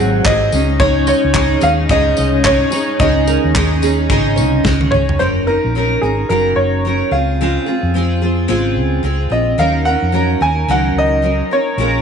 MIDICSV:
0, 0, Header, 1, 7, 480
1, 0, Start_track
1, 0, Tempo, 548948
1, 703, Time_signature, 4, 2, 24, 8
1, 10508, End_track
2, 0, Start_track
2, 0, Title_t, "Upright piano"
2, 0, Program_c, 0, 0
2, 0, Note_on_c, 0, 78, 118
2, 223, Note_on_c, 0, 75, 91
2, 248, Note_off_c, 0, 78, 0
2, 696, Note_on_c, 0, 73, 93
2, 718, Note_off_c, 0, 75, 0
2, 923, Note_off_c, 0, 73, 0
2, 944, Note_on_c, 0, 73, 95
2, 1428, Note_on_c, 0, 77, 101
2, 1438, Note_off_c, 0, 73, 0
2, 1481, Note_off_c, 0, 77, 0
2, 1666, Note_on_c, 0, 75, 100
2, 2145, Note_on_c, 0, 73, 94
2, 2159, Note_off_c, 0, 75, 0
2, 2620, Note_on_c, 0, 75, 88
2, 2639, Note_off_c, 0, 73, 0
2, 4026, Note_off_c, 0, 75, 0
2, 4290, Note_on_c, 0, 73, 75
2, 4540, Note_on_c, 0, 72, 77
2, 4544, Note_off_c, 0, 73, 0
2, 4594, Note_off_c, 0, 72, 0
2, 4783, Note_on_c, 0, 70, 85
2, 5260, Note_on_c, 0, 68, 69
2, 5278, Note_off_c, 0, 70, 0
2, 5501, Note_on_c, 0, 70, 72
2, 5509, Note_off_c, 0, 68, 0
2, 5735, Note_on_c, 0, 73, 77
2, 5750, Note_off_c, 0, 70, 0
2, 6226, Note_on_c, 0, 77, 74
2, 6235, Note_off_c, 0, 73, 0
2, 8147, Note_on_c, 0, 75, 80
2, 8204, Note_off_c, 0, 77, 0
2, 8387, Note_on_c, 0, 77, 88
2, 8394, Note_off_c, 0, 75, 0
2, 8616, Note_on_c, 0, 78, 106
2, 8633, Note_off_c, 0, 77, 0
2, 9111, Note_on_c, 0, 80, 94
2, 9115, Note_off_c, 0, 78, 0
2, 9355, Note_off_c, 0, 80, 0
2, 9363, Note_on_c, 0, 78, 93
2, 9601, Note_off_c, 0, 78, 0
2, 9604, Note_on_c, 0, 75, 100
2, 10041, Note_off_c, 0, 75, 0
2, 10079, Note_on_c, 0, 73, 85
2, 10508, Note_off_c, 0, 73, 0
2, 10508, End_track
3, 0, Start_track
3, 0, Title_t, "Nylon-string guitar"
3, 0, Program_c, 1, 24
3, 0, Note_on_c, 1, 68, 76
3, 208, Note_off_c, 1, 68, 0
3, 934, Note_on_c, 1, 75, 82
3, 1076, Note_off_c, 1, 75, 0
3, 1419, Note_on_c, 1, 73, 71
3, 1558, Note_off_c, 1, 73, 0
3, 1904, Note_on_c, 1, 75, 74
3, 2125, Note_off_c, 1, 75, 0
3, 2135, Note_on_c, 1, 75, 87
3, 2276, Note_off_c, 1, 75, 0
3, 2386, Note_on_c, 1, 73, 81
3, 2521, Note_off_c, 1, 73, 0
3, 2863, Note_on_c, 1, 70, 78
3, 3000, Note_off_c, 1, 70, 0
3, 3342, Note_on_c, 1, 68, 79
3, 3479, Note_off_c, 1, 68, 0
3, 3812, Note_on_c, 1, 73, 72
3, 4045, Note_off_c, 1, 73, 0
3, 10508, End_track
4, 0, Start_track
4, 0, Title_t, "Steel-string acoustic guitar"
4, 0, Program_c, 2, 25
4, 0, Note_on_c, 2, 44, 84
4, 0, Note_on_c, 2, 51, 81
4, 0, Note_on_c, 2, 54, 83
4, 0, Note_on_c, 2, 60, 89
4, 0, Note_on_c, 2, 66, 84
4, 0, Note_on_c, 2, 68, 84
4, 210, Note_off_c, 2, 54, 0
4, 216, Note_off_c, 2, 60, 0
4, 221, Note_on_c, 2, 54, 57
4, 222, Note_off_c, 2, 44, 0
4, 226, Note_off_c, 2, 66, 0
4, 227, Note_on_c, 2, 60, 66
4, 235, Note_on_c, 2, 66, 60
4, 239, Note_off_c, 2, 68, 0
4, 242, Note_on_c, 2, 68, 65
4, 447, Note_off_c, 2, 68, 0
4, 458, Note_on_c, 2, 68, 45
4, 462, Note_off_c, 2, 54, 0
4, 463, Note_off_c, 2, 66, 0
4, 465, Note_off_c, 2, 60, 0
4, 466, Note_on_c, 2, 63, 42
4, 471, Note_on_c, 2, 61, 42
4, 497, Note_off_c, 2, 51, 0
4, 686, Note_off_c, 2, 61, 0
4, 691, Note_off_c, 2, 68, 0
4, 692, Note_off_c, 2, 63, 0
4, 695, Note_on_c, 2, 49, 76
4, 697, Note_on_c, 2, 61, 78
4, 701, Note_on_c, 2, 56, 84
4, 701, Note_on_c, 2, 68, 83
4, 703, Note_on_c, 2, 63, 91
4, 1158, Note_off_c, 2, 56, 0
4, 1168, Note_on_c, 2, 56, 66
4, 1170, Note_off_c, 2, 61, 0
4, 1174, Note_on_c, 2, 61, 65
4, 1175, Note_off_c, 2, 68, 0
4, 1176, Note_off_c, 2, 63, 0
4, 1179, Note_on_c, 2, 63, 72
4, 1180, Note_off_c, 2, 49, 0
4, 1186, Note_on_c, 2, 68, 69
4, 1394, Note_off_c, 2, 68, 0
4, 1402, Note_off_c, 2, 63, 0
4, 1404, Note_on_c, 2, 68, 57
4, 1410, Note_off_c, 2, 61, 0
4, 1413, Note_on_c, 2, 63, 50
4, 1416, Note_off_c, 2, 56, 0
4, 1420, Note_on_c, 2, 61, 45
4, 1654, Note_off_c, 2, 61, 0
4, 1654, Note_off_c, 2, 63, 0
4, 1654, Note_off_c, 2, 68, 0
4, 1656, Note_on_c, 2, 49, 81
4, 1662, Note_on_c, 2, 56, 85
4, 1664, Note_on_c, 2, 63, 91
4, 1665, Note_on_c, 2, 61, 86
4, 1665, Note_on_c, 2, 68, 80
4, 2122, Note_off_c, 2, 56, 0
4, 2133, Note_on_c, 2, 56, 56
4, 2137, Note_off_c, 2, 61, 0
4, 2137, Note_off_c, 2, 68, 0
4, 2140, Note_off_c, 2, 49, 0
4, 2140, Note_on_c, 2, 61, 64
4, 2143, Note_off_c, 2, 63, 0
4, 2146, Note_on_c, 2, 63, 70
4, 2148, Note_on_c, 2, 68, 68
4, 2354, Note_off_c, 2, 68, 0
4, 2364, Note_on_c, 2, 68, 49
4, 2365, Note_off_c, 2, 63, 0
4, 2371, Note_off_c, 2, 61, 0
4, 2376, Note_on_c, 2, 63, 44
4, 2378, Note_off_c, 2, 56, 0
4, 2381, Note_on_c, 2, 61, 39
4, 2614, Note_off_c, 2, 61, 0
4, 2614, Note_off_c, 2, 68, 0
4, 2618, Note_on_c, 2, 49, 73
4, 2620, Note_off_c, 2, 63, 0
4, 2621, Note_on_c, 2, 56, 84
4, 2625, Note_on_c, 2, 61, 77
4, 2630, Note_on_c, 2, 63, 84
4, 2630, Note_on_c, 2, 68, 86
4, 3092, Note_off_c, 2, 56, 0
4, 3100, Note_off_c, 2, 49, 0
4, 3102, Note_on_c, 2, 56, 67
4, 3106, Note_off_c, 2, 61, 0
4, 3106, Note_off_c, 2, 63, 0
4, 3107, Note_off_c, 2, 68, 0
4, 3109, Note_on_c, 2, 63, 64
4, 3110, Note_on_c, 2, 61, 65
4, 3118, Note_on_c, 2, 68, 64
4, 3331, Note_off_c, 2, 68, 0
4, 3337, Note_off_c, 2, 63, 0
4, 3341, Note_on_c, 2, 68, 66
4, 3343, Note_off_c, 2, 56, 0
4, 3347, Note_off_c, 2, 61, 0
4, 3347, Note_on_c, 2, 63, 61
4, 3359, Note_on_c, 2, 61, 53
4, 3577, Note_off_c, 2, 63, 0
4, 3579, Note_off_c, 2, 61, 0
4, 3581, Note_on_c, 2, 49, 83
4, 3582, Note_off_c, 2, 68, 0
4, 3582, Note_on_c, 2, 56, 85
4, 3587, Note_on_c, 2, 63, 90
4, 3589, Note_on_c, 2, 61, 87
4, 3594, Note_on_c, 2, 68, 90
4, 4048, Note_off_c, 2, 56, 0
4, 4058, Note_on_c, 2, 56, 69
4, 4062, Note_off_c, 2, 49, 0
4, 4066, Note_off_c, 2, 61, 0
4, 4068, Note_off_c, 2, 63, 0
4, 4069, Note_off_c, 2, 68, 0
4, 4070, Note_on_c, 2, 61, 67
4, 4071, Note_on_c, 2, 63, 72
4, 4078, Note_on_c, 2, 68, 70
4, 4291, Note_off_c, 2, 68, 0
4, 4301, Note_off_c, 2, 56, 0
4, 4301, Note_on_c, 2, 68, 47
4, 4305, Note_off_c, 2, 63, 0
4, 4307, Note_off_c, 2, 61, 0
4, 4315, Note_on_c, 2, 63, 48
4, 4320, Note_on_c, 2, 61, 40
4, 4536, Note_off_c, 2, 61, 0
4, 4536, Note_off_c, 2, 63, 0
4, 4540, Note_on_c, 2, 54, 67
4, 4542, Note_off_c, 2, 68, 0
4, 4546, Note_on_c, 2, 61, 71
4, 4546, Note_on_c, 2, 63, 65
4, 4551, Note_on_c, 2, 70, 69
4, 4773, Note_off_c, 2, 70, 0
4, 4777, Note_off_c, 2, 63, 0
4, 4782, Note_off_c, 2, 54, 0
4, 4784, Note_on_c, 2, 70, 48
4, 4785, Note_off_c, 2, 61, 0
4, 4788, Note_on_c, 2, 63, 44
4, 4801, Note_on_c, 2, 61, 37
4, 5024, Note_off_c, 2, 61, 0
4, 5024, Note_off_c, 2, 70, 0
4, 5026, Note_off_c, 2, 63, 0
4, 5029, Note_on_c, 2, 54, 52
4, 5034, Note_on_c, 2, 61, 55
4, 5043, Note_on_c, 2, 63, 55
4, 5049, Note_on_c, 2, 70, 62
4, 5262, Note_off_c, 2, 70, 0
4, 5267, Note_off_c, 2, 54, 0
4, 5269, Note_off_c, 2, 61, 0
4, 5269, Note_off_c, 2, 63, 0
4, 5272, Note_on_c, 2, 70, 47
4, 5279, Note_on_c, 2, 63, 41
4, 5285, Note_on_c, 2, 61, 35
4, 5501, Note_off_c, 2, 63, 0
4, 5502, Note_off_c, 2, 70, 0
4, 5504, Note_off_c, 2, 61, 0
4, 5505, Note_on_c, 2, 54, 64
4, 5511, Note_on_c, 2, 63, 73
4, 5513, Note_on_c, 2, 70, 73
4, 5515, Note_on_c, 2, 61, 62
4, 5978, Note_off_c, 2, 54, 0
4, 5988, Note_off_c, 2, 63, 0
4, 5989, Note_off_c, 2, 70, 0
4, 5989, Note_on_c, 2, 54, 54
4, 5994, Note_off_c, 2, 61, 0
4, 5997, Note_on_c, 2, 61, 49
4, 6005, Note_on_c, 2, 63, 55
4, 6008, Note_on_c, 2, 70, 54
4, 6216, Note_off_c, 2, 70, 0
4, 6220, Note_on_c, 2, 68, 44
4, 6227, Note_off_c, 2, 54, 0
4, 6230, Note_off_c, 2, 63, 0
4, 6231, Note_off_c, 2, 61, 0
4, 6234, Note_on_c, 2, 65, 36
4, 6241, Note_on_c, 2, 60, 36
4, 6463, Note_off_c, 2, 68, 0
4, 6469, Note_off_c, 2, 60, 0
4, 6469, Note_off_c, 2, 65, 0
4, 6477, Note_on_c, 2, 49, 67
4, 6479, Note_on_c, 2, 60, 67
4, 6483, Note_on_c, 2, 56, 70
4, 6484, Note_on_c, 2, 65, 73
4, 6484, Note_on_c, 2, 68, 74
4, 6690, Note_off_c, 2, 68, 0
4, 6697, Note_off_c, 2, 65, 0
4, 6700, Note_on_c, 2, 68, 46
4, 6708, Note_off_c, 2, 60, 0
4, 6708, Note_on_c, 2, 65, 45
4, 6711, Note_off_c, 2, 49, 0
4, 6714, Note_off_c, 2, 56, 0
4, 6718, Note_on_c, 2, 60, 41
4, 6942, Note_off_c, 2, 60, 0
4, 6943, Note_off_c, 2, 68, 0
4, 6943, Note_on_c, 2, 56, 55
4, 6946, Note_off_c, 2, 65, 0
4, 6952, Note_on_c, 2, 60, 60
4, 6958, Note_on_c, 2, 65, 59
4, 6963, Note_on_c, 2, 68, 74
4, 7174, Note_off_c, 2, 68, 0
4, 7180, Note_off_c, 2, 65, 0
4, 7185, Note_off_c, 2, 56, 0
4, 7185, Note_on_c, 2, 68, 50
4, 7189, Note_off_c, 2, 60, 0
4, 7191, Note_on_c, 2, 65, 48
4, 7200, Note_on_c, 2, 60, 43
4, 7408, Note_off_c, 2, 60, 0
4, 7412, Note_off_c, 2, 65, 0
4, 7415, Note_on_c, 2, 49, 74
4, 7416, Note_off_c, 2, 68, 0
4, 7416, Note_on_c, 2, 56, 80
4, 7418, Note_on_c, 2, 60, 78
4, 7422, Note_on_c, 2, 65, 85
4, 7426, Note_on_c, 2, 68, 85
4, 7883, Note_off_c, 2, 56, 0
4, 7891, Note_off_c, 2, 60, 0
4, 7894, Note_on_c, 2, 56, 58
4, 7895, Note_off_c, 2, 65, 0
4, 7900, Note_off_c, 2, 68, 0
4, 7901, Note_off_c, 2, 49, 0
4, 7902, Note_on_c, 2, 60, 58
4, 7905, Note_on_c, 2, 65, 57
4, 7910, Note_on_c, 2, 68, 67
4, 8120, Note_off_c, 2, 68, 0
4, 8130, Note_on_c, 2, 68, 43
4, 8133, Note_off_c, 2, 65, 0
4, 8140, Note_off_c, 2, 56, 0
4, 8141, Note_off_c, 2, 60, 0
4, 8143, Note_on_c, 2, 65, 36
4, 8152, Note_on_c, 2, 60, 36
4, 8375, Note_on_c, 2, 51, 66
4, 8378, Note_off_c, 2, 60, 0
4, 8378, Note_off_c, 2, 68, 0
4, 8379, Note_off_c, 2, 65, 0
4, 8381, Note_on_c, 2, 61, 69
4, 8382, Note_on_c, 2, 54, 64
4, 8383, Note_on_c, 2, 63, 73
4, 8388, Note_on_c, 2, 70, 76
4, 8616, Note_off_c, 2, 70, 0
4, 8620, Note_off_c, 2, 51, 0
4, 8622, Note_off_c, 2, 63, 0
4, 8623, Note_off_c, 2, 61, 0
4, 8624, Note_off_c, 2, 54, 0
4, 8627, Note_on_c, 2, 70, 51
4, 8632, Note_on_c, 2, 63, 41
4, 8644, Note_on_c, 2, 61, 38
4, 8848, Note_off_c, 2, 61, 0
4, 8851, Note_on_c, 2, 54, 61
4, 8852, Note_off_c, 2, 63, 0
4, 8859, Note_off_c, 2, 70, 0
4, 8859, Note_on_c, 2, 61, 54
4, 8862, Note_on_c, 2, 63, 56
4, 8869, Note_on_c, 2, 70, 66
4, 9089, Note_off_c, 2, 70, 0
4, 9096, Note_off_c, 2, 63, 0
4, 9098, Note_off_c, 2, 54, 0
4, 9099, Note_on_c, 2, 70, 49
4, 9102, Note_off_c, 2, 61, 0
4, 9107, Note_on_c, 2, 63, 44
4, 9113, Note_on_c, 2, 61, 35
4, 9337, Note_off_c, 2, 61, 0
4, 9341, Note_off_c, 2, 63, 0
4, 9342, Note_off_c, 2, 70, 0
4, 9342, Note_on_c, 2, 51, 67
4, 9344, Note_on_c, 2, 54, 67
4, 9348, Note_on_c, 2, 61, 72
4, 9351, Note_on_c, 2, 63, 71
4, 9355, Note_on_c, 2, 70, 72
4, 9801, Note_off_c, 2, 54, 0
4, 9812, Note_on_c, 2, 54, 52
4, 9815, Note_off_c, 2, 63, 0
4, 9820, Note_off_c, 2, 61, 0
4, 9823, Note_off_c, 2, 51, 0
4, 9823, Note_on_c, 2, 61, 53
4, 9825, Note_off_c, 2, 70, 0
4, 9825, Note_on_c, 2, 63, 51
4, 9828, Note_on_c, 2, 70, 54
4, 10056, Note_off_c, 2, 70, 0
4, 10058, Note_off_c, 2, 54, 0
4, 10064, Note_off_c, 2, 61, 0
4, 10065, Note_off_c, 2, 63, 0
4, 10066, Note_on_c, 2, 70, 43
4, 10077, Note_on_c, 2, 63, 39
4, 10080, Note_on_c, 2, 61, 34
4, 10299, Note_off_c, 2, 61, 0
4, 10301, Note_on_c, 2, 46, 66
4, 10304, Note_on_c, 2, 56, 71
4, 10305, Note_off_c, 2, 70, 0
4, 10306, Note_off_c, 2, 63, 0
4, 10309, Note_on_c, 2, 61, 68
4, 10309, Note_on_c, 2, 65, 71
4, 10315, Note_on_c, 2, 70, 77
4, 10508, Note_off_c, 2, 46, 0
4, 10508, Note_off_c, 2, 56, 0
4, 10508, Note_off_c, 2, 61, 0
4, 10508, Note_off_c, 2, 65, 0
4, 10508, Note_off_c, 2, 70, 0
4, 10508, End_track
5, 0, Start_track
5, 0, Title_t, "String section"
5, 0, Program_c, 3, 48
5, 0, Note_on_c, 3, 48, 73
5, 0, Note_on_c, 3, 54, 88
5, 0, Note_on_c, 3, 56, 71
5, 432, Note_off_c, 3, 54, 0
5, 435, Note_off_c, 3, 48, 0
5, 455, Note_on_c, 3, 63, 80
5, 459, Note_on_c, 3, 61, 78
5, 4504, Note_off_c, 3, 63, 0
5, 4506, Note_off_c, 3, 61, 0
5, 4513, Note_off_c, 3, 56, 0
5, 10508, End_track
6, 0, Start_track
6, 0, Title_t, "Fingered electric bass"
6, 0, Program_c, 4, 33
6, 0, Note_on_c, 4, 32, 87
6, 176, Note_off_c, 4, 32, 0
6, 221, Note_on_c, 4, 32, 94
6, 419, Note_off_c, 4, 32, 0
6, 460, Note_on_c, 4, 37, 93
6, 973, Note_off_c, 4, 37, 0
6, 1087, Note_on_c, 4, 37, 84
6, 1363, Note_off_c, 4, 37, 0
6, 1422, Note_on_c, 4, 39, 96
6, 1619, Note_off_c, 4, 39, 0
6, 1657, Note_on_c, 4, 37, 98
6, 1857, Note_off_c, 4, 37, 0
6, 1911, Note_on_c, 4, 36, 77
6, 2302, Note_off_c, 4, 36, 0
6, 2623, Note_on_c, 4, 37, 109
6, 2938, Note_off_c, 4, 37, 0
6, 3009, Note_on_c, 4, 39, 80
6, 3555, Note_off_c, 4, 39, 0
6, 3587, Note_on_c, 4, 32, 83
6, 3832, Note_on_c, 4, 36, 85
6, 3845, Note_off_c, 4, 32, 0
6, 4025, Note_off_c, 4, 36, 0
6, 4061, Note_on_c, 4, 37, 89
6, 4259, Note_off_c, 4, 37, 0
6, 4311, Note_on_c, 4, 37, 85
6, 4505, Note_off_c, 4, 37, 0
6, 4549, Note_on_c, 4, 30, 87
6, 4862, Note_off_c, 4, 30, 0
6, 4936, Note_on_c, 4, 34, 74
6, 5208, Note_off_c, 4, 34, 0
6, 5268, Note_on_c, 4, 32, 76
6, 5463, Note_off_c, 4, 32, 0
6, 5506, Note_on_c, 4, 30, 77
6, 5702, Note_off_c, 4, 30, 0
6, 5739, Note_on_c, 4, 30, 71
6, 6135, Note_off_c, 4, 30, 0
6, 6220, Note_on_c, 4, 37, 78
6, 6616, Note_off_c, 4, 37, 0
6, 6847, Note_on_c, 4, 41, 78
6, 7395, Note_off_c, 4, 41, 0
6, 7428, Note_on_c, 4, 32, 79
6, 7664, Note_on_c, 4, 37, 72
6, 7677, Note_off_c, 4, 32, 0
6, 7861, Note_off_c, 4, 37, 0
6, 7900, Note_on_c, 4, 37, 76
6, 8099, Note_off_c, 4, 37, 0
6, 8137, Note_on_c, 4, 34, 79
6, 8337, Note_off_c, 4, 34, 0
6, 8378, Note_on_c, 4, 39, 91
6, 8696, Note_off_c, 4, 39, 0
6, 8765, Note_on_c, 4, 41, 76
6, 9042, Note_off_c, 4, 41, 0
6, 9102, Note_on_c, 4, 39, 81
6, 9300, Note_off_c, 4, 39, 0
6, 9338, Note_on_c, 4, 37, 83
6, 9538, Note_off_c, 4, 37, 0
6, 9573, Note_on_c, 4, 37, 69
6, 9971, Note_off_c, 4, 37, 0
6, 10296, Note_on_c, 4, 34, 95
6, 10508, Note_off_c, 4, 34, 0
6, 10508, End_track
7, 0, Start_track
7, 0, Title_t, "Drums"
7, 218, Note_on_c, 9, 36, 106
7, 221, Note_on_c, 9, 39, 109
7, 306, Note_off_c, 9, 36, 0
7, 308, Note_off_c, 9, 39, 0
7, 458, Note_on_c, 9, 54, 62
7, 545, Note_off_c, 9, 54, 0
7, 697, Note_on_c, 9, 36, 111
7, 785, Note_off_c, 9, 36, 0
7, 935, Note_on_c, 9, 54, 65
7, 1023, Note_off_c, 9, 54, 0
7, 1175, Note_on_c, 9, 39, 112
7, 1176, Note_on_c, 9, 36, 98
7, 1263, Note_off_c, 9, 36, 0
7, 1263, Note_off_c, 9, 39, 0
7, 1410, Note_on_c, 9, 54, 57
7, 1498, Note_off_c, 9, 54, 0
7, 1656, Note_on_c, 9, 36, 101
7, 1743, Note_off_c, 9, 36, 0
7, 1895, Note_on_c, 9, 54, 62
7, 1982, Note_off_c, 9, 54, 0
7, 2138, Note_on_c, 9, 39, 106
7, 2141, Note_on_c, 9, 36, 100
7, 2226, Note_off_c, 9, 39, 0
7, 2228, Note_off_c, 9, 36, 0
7, 2377, Note_on_c, 9, 54, 68
7, 2464, Note_off_c, 9, 54, 0
7, 2622, Note_on_c, 9, 36, 103
7, 2709, Note_off_c, 9, 36, 0
7, 2863, Note_on_c, 9, 54, 67
7, 2950, Note_off_c, 9, 54, 0
7, 3102, Note_on_c, 9, 36, 104
7, 3106, Note_on_c, 9, 39, 115
7, 3189, Note_off_c, 9, 36, 0
7, 3194, Note_off_c, 9, 39, 0
7, 3347, Note_on_c, 9, 54, 54
7, 3434, Note_off_c, 9, 54, 0
7, 3583, Note_on_c, 9, 36, 100
7, 3670, Note_off_c, 9, 36, 0
7, 3825, Note_on_c, 9, 54, 58
7, 3912, Note_off_c, 9, 54, 0
7, 4063, Note_on_c, 9, 36, 104
7, 4067, Note_on_c, 9, 38, 58
7, 4151, Note_off_c, 9, 36, 0
7, 4154, Note_off_c, 9, 38, 0
7, 4204, Note_on_c, 9, 48, 63
7, 4292, Note_off_c, 9, 48, 0
7, 4299, Note_on_c, 9, 45, 90
7, 4386, Note_off_c, 9, 45, 0
7, 4451, Note_on_c, 9, 43, 91
7, 4539, Note_off_c, 9, 43, 0
7, 10508, End_track
0, 0, End_of_file